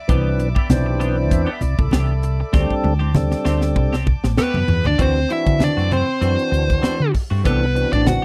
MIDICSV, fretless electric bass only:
0, 0, Header, 1, 2, 480
1, 0, Start_track
1, 0, Tempo, 614125
1, 68, Time_signature, 4, 2, 24, 8
1, 6447, End_track
2, 0, Start_track
2, 0, Title_t, "Fretless electric bass"
2, 0, Program_c, 0, 35
2, 70, Note_on_c, 0, 36, 91
2, 301, Note_off_c, 0, 36, 0
2, 301, Note_on_c, 0, 35, 85
2, 409, Note_off_c, 0, 35, 0
2, 543, Note_on_c, 0, 35, 98
2, 1026, Note_off_c, 0, 35, 0
2, 1026, Note_on_c, 0, 40, 88
2, 1132, Note_off_c, 0, 40, 0
2, 1266, Note_on_c, 0, 36, 87
2, 1372, Note_off_c, 0, 36, 0
2, 1396, Note_on_c, 0, 36, 85
2, 1485, Note_off_c, 0, 36, 0
2, 1502, Note_on_c, 0, 36, 87
2, 1890, Note_off_c, 0, 36, 0
2, 1978, Note_on_c, 0, 38, 100
2, 2087, Note_off_c, 0, 38, 0
2, 2220, Note_on_c, 0, 38, 86
2, 2609, Note_off_c, 0, 38, 0
2, 2700, Note_on_c, 0, 38, 85
2, 2936, Note_off_c, 0, 38, 0
2, 2936, Note_on_c, 0, 36, 81
2, 3238, Note_off_c, 0, 36, 0
2, 3315, Note_on_c, 0, 33, 87
2, 3403, Note_off_c, 0, 33, 0
2, 3549, Note_on_c, 0, 42, 86
2, 3650, Note_off_c, 0, 42, 0
2, 3655, Note_on_c, 0, 40, 82
2, 3777, Note_off_c, 0, 40, 0
2, 3789, Note_on_c, 0, 38, 81
2, 3890, Note_off_c, 0, 38, 0
2, 3900, Note_on_c, 0, 38, 85
2, 4095, Note_off_c, 0, 38, 0
2, 4271, Note_on_c, 0, 50, 71
2, 4466, Note_off_c, 0, 50, 0
2, 4509, Note_on_c, 0, 42, 69
2, 4705, Note_off_c, 0, 42, 0
2, 4857, Note_on_c, 0, 42, 77
2, 4966, Note_off_c, 0, 42, 0
2, 5094, Note_on_c, 0, 38, 92
2, 5292, Note_off_c, 0, 38, 0
2, 5471, Note_on_c, 0, 50, 77
2, 5561, Note_off_c, 0, 50, 0
2, 5713, Note_on_c, 0, 43, 81
2, 5802, Note_off_c, 0, 43, 0
2, 5825, Note_on_c, 0, 36, 92
2, 6125, Note_off_c, 0, 36, 0
2, 6194, Note_on_c, 0, 33, 82
2, 6389, Note_off_c, 0, 33, 0
2, 6447, End_track
0, 0, End_of_file